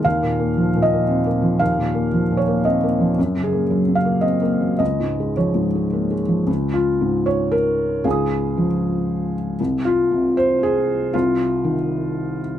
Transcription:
<<
  \new Staff \with { instrumentName = "Felt piano" } { \time 3/4 \key des \major \tempo 4 = 115 << { r2. | r2. | r2. | r2. |
r2. | <f'' aes'' ees'''>2. | r2. | r2. | } \\ { f''4. ees''4. | f''4. des''8 ees''4 | r8 aes'4 f''8 ees''4 | ees''4 des''4. r8 |
r8 f'4 des''8 bes'4 | aes'2~ aes'8 r8 | r8 f'4 c''8 aes'4 | f'2~ f'8 r8 | } >> }
  \new Staff \with { instrumentName = "Felt piano" } { \clef bass \time 3/4 \key des \major \tuplet 3/2 { ees,8 bes,8 bes8 f8 bes,8 bes8 c'8 bes8 f8 } | \tuplet 3/2 { ees,8 bes,8 bes8 f8 bes,8 bes8 c'8 bes8 f8 } | \tuplet 3/2 { ges,8 des8 bes8 ges8 des8 bes8 c'8 bes8 ges8 } | \tuplet 3/2 { des,8 aes,8 aes8 f8 aes,8 aes8 bes8 aes8 f8 } |
des,4 aes,2 | des,4 f2 | c,4 c2 | c,4 ees2 | }
>>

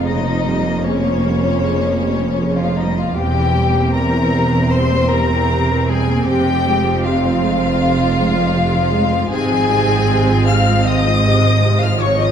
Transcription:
<<
  \new Staff \with { instrumentName = "Violin section" } { \time 4/4 \key f \minor \tempo 4 = 78 ees''4 des''2~ des''16 f''16 ees''16 f''16 | g''4 bes''4 c'''8 bes''4 aes''8 | g''4 f''2. | aes''4. f'''8 ees'''4~ ees'''16 f'''16 des'''16 ees'''16 | }
  \new Staff \with { instrumentName = "Violin section" } { \time 4/4 \key f \minor ees'4 des'2~ des'16 f'16 ees'16 f'16 | g'4 bes'4 c''8 bes'4 aes'8 | g'4 f'2. | aes'4. f''8 ees''4~ ees''16 f''16 des''16 ees''16 | }
  \new Staff \with { instrumentName = "Viola section" } { \clef bass \time 4/4 \key f \minor << { bes1 | c'1~ | c'1 | c'1 | } \\ { des16 f16 g16 f16 des16 f16 g16 f16 des16 f16 g16 f16 des16 f16 g16 f16 | c16 e16 g16 bes16 g16 e16 c16 e16 g16 bes16 g16 e16 c16 e16 g16 bes16 | c16 f16 aes16 f16 c16 f16 aes16 f16 c16 f16 aes16 f16 c16 f16 aes16 f16 | c16 f16 c16 f16 c16 f16 c16 f16 c16 f16 c16 f16 c16 f16 c16 f16 | } >> }
  \new Staff \with { instrumentName = "Cello section" } { \clef bass \time 4/4 \key f \minor f,1 | e,1 | f,1 | aes,1 | }
  \new Staff \with { instrumentName = "Double bass section" } { \clef bass \time 4/4 \key f \minor f,,1 | e,,1 | f,,1 | aes,,1 | }
>>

